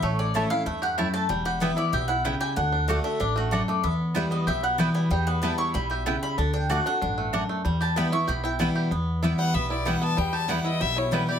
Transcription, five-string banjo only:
X:1
M:4/4
L:1/8
Q:1/4=189
K:Edor
V:1 name="Five-string banjo"
A, C A, E A, G E A, | G, G B, E G E G, G | D D A, D D A, D A, | B,2 G, B, G G, B, G, |
G, B, G, E G, G E G, | D D A, D D A, D A, | G, G B, E G E G, G | B,2 E G, B, E G, B, |
G, G G, E G, E G, G |]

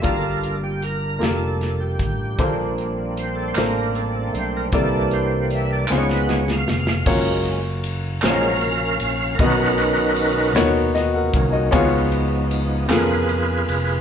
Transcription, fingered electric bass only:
X:1
M:6/8
L:1/8
Q:3/8=51
K:Gdor
V:1 name="Fingered electric bass" clef=bass
G,,,3 F,,,2 A,,, | B,,,3 A,,,2 =B,,, | C,,3 _D,,2 F,,, | [K:F#] F,,,3 A,,,2 A,,, |
B,,,3 D,,2 ^B,,, | C,,3 E,,2 E,,, |]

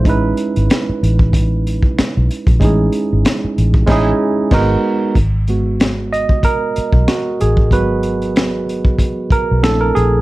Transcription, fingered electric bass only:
X:1
M:4/4
L:1/16
Q:"Swing 16ths" 1/4=94
K:G#phr
V:1 name="Fingered electric bass" clef=bass
A,,,2 z G,,, z2 A,,,4- A,,, z2 B,,, z ^A,,, | A,,,2 z G,,, z2 A,,,2 A,,,2 z2 G,,,2 z2 | G,,,6- G,,, z4 B,,, z2 A,,,2 | G,,,6- G,,, z4 B,,, ^A,,,2 A,,,2 |]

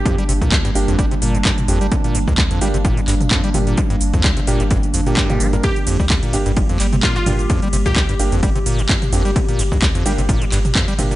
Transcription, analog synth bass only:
X:1
M:4/4
L:1/16
Q:"Swing 16ths" 1/4=129
K:Gm
V:1 name="Analog synth bass" clef=bass
z2 G,,, D,,2 z G,,, G,,,2 z G,,,2 z2 G,,,2 | z2 G,,, D,,2 z G,,, G,,,2 z G,,,2 z2 G,,,2 | z2 G,,, D,,2 z G,,, G,,,2 z G,,,2 z2 G,,,2 | z2 G,,, D,,2 z G,,, G,,,2 z G,,,2 z2 G,,,2 |
z2 G,,, D,,2 z G,,, G,,,2 z G,,,2 z2 G,,,2 | z2 G,,, D,,2 z G,,, G,,,2 z G,,,2 z2 G,,,2 |]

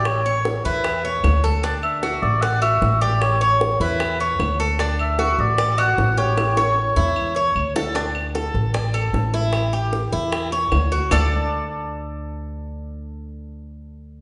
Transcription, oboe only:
X:1
M:4/4
L:1/8
Q:1/4=152
K:D
V:1 name="Oboe"
c2 z B3 z2 | z e2 d f e2 d | c2 z B3 z2 | z e2 d2 f2 c- |
c6- c z | z8 | z8 | z8 |
z8 |]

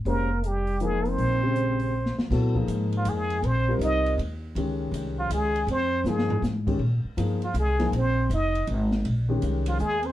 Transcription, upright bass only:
X:1
M:3/4
L:1/8
Q:"Swing" 1/4=160
K:Bbdor
V:1 name="Upright bass" clef=bass
F,,,6 | B,,,4- B,,, z | B,,2 A,,2 F,,2 | B,,,2 C,,2 E,,2 |
D,,2 C,,2 D,,2 | F,,2 G,,2 A,,2 | B,, z G,,2 C,,2 | B,,,2 F,,,2 A,,,2 |
B,,,2 C,,2 E,,2 |]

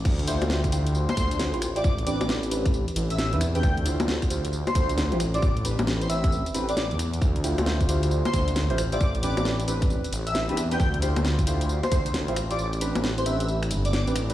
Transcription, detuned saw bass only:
X:1
M:4/4
L:1/16
Q:"Swing 16ths" 1/4=134
K:Ddor
V:1 name="Detuned saw bass" clef=bass
D,,3 D,,3 D,,3 z D,,3 A,,,3 | A,,,3 A,,,3 A,,,3 z A,,,3 E,,3 | D,,3 D,,3 D,,3 z D,,3 A,,,3 | A,,,3 A,,,3 A,,,3 z A,,,3 E,,3 |
D,,3 D,,3 D,,3 z D,,3 A,,,3 | A,,,3 A,,,3 A,,,3 z A,,,3 E,,3 | D,,3 D,,3 D,,3 z D,,3 A,,,3 | A,,,3 A,,,3 A,,,4 G,,,3 A,,,3 |]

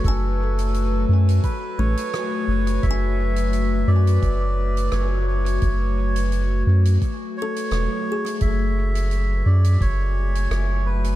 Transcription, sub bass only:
X:1
M:4/4
L:1/8
Q:"Swing 16ths" 1/4=86
K:A
V:1 name="Sub bass" clef=bass
F,,,3 F,, z A,,, z F,,, | F,,,3 F,, F,,,2 F,,,2 | F,,,3 F,, z2 E,,, z | F,,,3 F,, F,,,2 F,,,2 |]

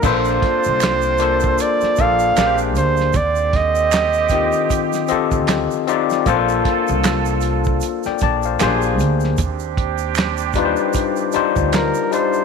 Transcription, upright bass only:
X:1
M:4/4
L:1/16
Q:"Swing 16ths" 1/4=77
K:Bb
V:1 name="Upright bass" clef=bass
B,,,2 z C,,4- C,, z2 B,,,2 B,,,2 D,,2 | E,,6- E,, z4 D,,2 z3 | B,,,2 z C,,4- C,, z2 B,,,2 B,,,2 D,,2 | E,,6- E,, z4 D,,2 z3 |]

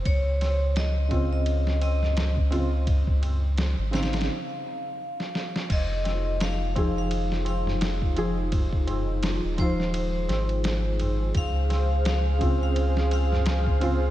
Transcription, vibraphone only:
X:1
M:4/4
L:1/16
Q:"Swing 16ths" 1/4=85
K:Fm
V:1 name="Vibraphone"
d4 e3 e3 e3 z3 | z6 f8- f z | e4 f3 f3 f3 z3 | z6 c8- c z |
f4 f3 f3 f3 z3 |]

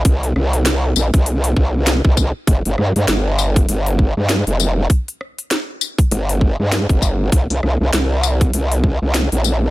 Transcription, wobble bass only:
X:1
M:4/4
L:1/16
Q:"Swing 16ths" 1/4=99
K:Bb
V:1 name="Wobble bass" clef=bass
C,,2 C,,4 B,,, C,,3 C,,3 C,,2 z | G,,, G,,, G,, G,, G,,,4 G,,,3 G,,2 F,,,3 | z8 G,,,3 G,,2 G,,,3 | C,, C,, C,, C,, C,,4 C,,3 C,,2 B,,,3 |]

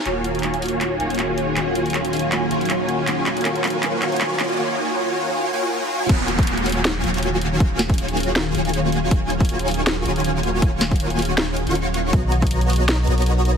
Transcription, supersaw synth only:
X:1
M:4/4
L:1/16
Q:"Swing 16ths" 1/4=159
K:Ebm
V:1 name="Supersaw synth"
[E,B,FGda]8- [E,B,FGda]2 [E,B,FGda]6 | [E,B,FGda]8- [E,B,FGda]2 [E,B,FGda]6 | [E,B,FGda]8- [E,B,FGda]2 [E,B,FGda]6 | [E,B,FGda]8- [E,B,FGda]2 [E,B,FGda]6 |
[B,FG]8- [B,FG]2 [E,B,FGda]6 | [E,B,FGa]8- [E,B,FGa]2 [E,B,FGda]6 | E,8- E,2 [E,B,FGda]6 | [E,B,FGda]8- [E,B,FGda]2 z [E,B,FGdd']4- [E,B,FGdd'] |
[=B,^Fd^d^a]8- [B,F_d^da]2 [B,F_d^da]6 |]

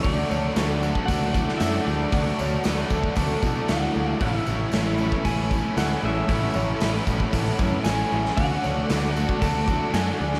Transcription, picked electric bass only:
X:1
M:4/4
L:1/8
Q:1/4=115
K:Dlyd
V:1 name="Picked electric bass" clef=bass
D,, D,, D,,2 D,,2 F,, D,, | D,, D,, D,, D,, D,, B,, D,, D,, | A,,, A,,, A,,,2 A,,,2 D,, A,,, | A,,, A,,, A,,, A,,, A,,, F,, A,,, A,,, |
D,, D,, D,,2 D,,2 F,, D,, |]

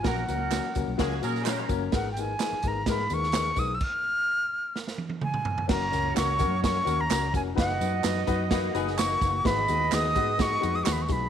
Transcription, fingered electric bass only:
X:1
M:4/4
L:1/16
Q:1/4=128
K:F#
V:1 name="Fingered electric bass" clef=bass
A,,,2 C,,3 z C,, B,,, C,,2 A,,4 F,,,2 | G,,,4 z2 G,,,2 G,,2 D,,4 B,,,2 | z16 | F,,,2 C,,2 C,,2 F,,4 D,,2 C,,2 E,,,2 |
F,,,2 F,,2 F,,2 F,,4 F,,,4 F,,,2 | G,,,2 D,,2 D,,2 G,,4 E,,2 D,,2 B,,,2 |]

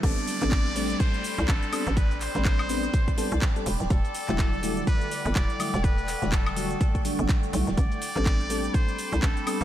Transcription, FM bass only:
X:1
M:4/4
L:1/16
Q:"Swing 16ths" 1/4=124
K:Ador
V:1 name="FM bass" clef=bass
A,,, z2 A,,,4- A,,, z3 C,, A,,, z2 A,,,- | A,,,3 A,,,4- A,,, z3 C,, z2 E,,, D,,, | E,,, z2 E,,,4- E,,, z3 G,,, E,,, z2 E,,,- | E,,,3 E,,,4- E,,, z3 G,,, z2 B,,, D,,, |
A,,, z2 A,,,4- A,,, z3 C,, A,,, z2 A,,, |]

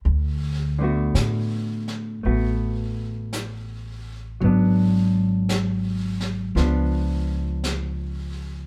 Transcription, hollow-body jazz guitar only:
X:1
M:4/4
L:1/8
Q:"Swing" 1/4=55
K:D
V:1 name="Hollow-body jazz guitar"
z [D,A,B,F]3 [A,B,F]4 | [F,B,D]4 [^E,B,D]4 |]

